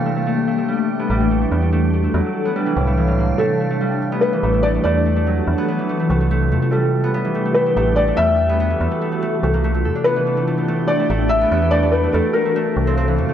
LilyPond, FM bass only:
\new Staff \with { instrumentName = "FM bass" } { \clef bass \time 4/4 \key a \minor \tempo 4 = 144 r2 r8 a,,4 e,8~ | e,4 e,8 r4 c,4. | r2 r8 a,,4 e,8~ | e,4 e,8 r4 c,4 f,8 |
r2 r8 a,,4 e,8~ | e,4 e,8 r4 c,4 f,8 | r2 r8 a,,4 e,8~ | e,4 e,8 r4 c,4 f,8 | }